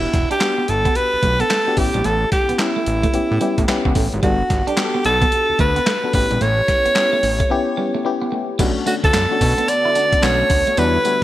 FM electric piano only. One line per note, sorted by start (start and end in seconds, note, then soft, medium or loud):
0.00 0.27 B3 medium
0.00 0.27 D4 medium
0.00 0.27 F#4 medium
0.00 0.28 G4 medium
0.41 1.18 B3 medium
0.41 1.18 D4 medium
0.41 1.19 F#4 medium
0.41 1.19 G4 medium
1.67 1.76 B3 medium
1.67 1.78 D4 medium
1.67 1.78 F#4 medium
1.67 1.78 G4 medium
1.78 2.46 B3 medium
1.78 2.46 C#4 medium
1.78 2.46 E4 medium
1.78 2.46 G4 medium
2.59 3.00 B3 medium
2.59 3.00 C#4 medium
2.59 3.00 E4 medium
2.59 3.00 G4 medium
3.14 3.35 B3 medium
3.14 3.35 C#4 medium
3.14 3.35 E4 medium
3.14 3.35 G4 loud
3.41 3.62 B3 medium
3.41 3.62 C#4 medium
3.41 3.62 E4 medium
3.41 3.63 G4 loud
3.68 4.09 B3 loud
3.68 4.09 C#4 loud
3.68 4.09 E4 loud
3.68 4.09 G4 loud
4.23 4.63 B3 medium
4.23 4.64 D4 medium
4.23 4.64 F#4 medium
4.23 4.64 A4 medium
4.78 5.55 B3 medium
4.78 5.55 D4 medium
4.78 5.55 F#4 medium
4.78 4.86 G4 medium
4.85 5.59 A4 medium
6.04 6.13 B3 medium
6.04 6.14 D4 medium
6.04 6.14 F#4 medium
6.04 6.14 A4 medium
6.14 6.82 B3 medium
6.14 6.82 C#4 medium
6.14 6.82 E4 medium
6.14 6.83 G4 medium
6.96 7.36 B3 medium
6.96 7.36 C#4 medium
6.96 7.37 E4 medium
6.96 7.37 G4 medium
7.50 7.71 B3 loud
7.50 7.71 C#4 loud
7.50 7.72 E4 loud
7.50 7.72 G4 loud
7.78 7.98 B3 medium
7.78 7.99 C#4 medium
7.78 7.99 E4 medium
7.78 7.99 G4 loud
8.05 8.45 B3 loud
8.05 8.45 C#4 loud
8.05 8.46 E4 loud
8.05 8.46 G4 loud
8.59 8.80 A3 loud
8.59 8.80 C#4 medium
8.59 8.81 D4 medium
8.59 8.81 F#4 loud
8.86 9.15 A3 medium
8.86 9.15 C#4 medium
8.86 9.15 D4 medium
8.86 9.16 F#4 medium
9.31 9.94 A3 medium
9.31 9.94 C#4 medium
9.31 9.95 D4 medium
9.31 9.95 F#4 loud
10.23 10.63 A3 medium
10.23 10.63 C#4 medium
10.23 10.64 D4 medium
10.23 10.64 F#4 loud
10.77 10.98 G3 medium
10.77 10.99 B3 medium
10.77 10.99 D4 medium
10.77 10.99 F#4 medium
11.05 11.24 G3 medium
11.05 11.24 B3 medium
11.05 11.24 D4 medium
11.05 11.24 F#4 medium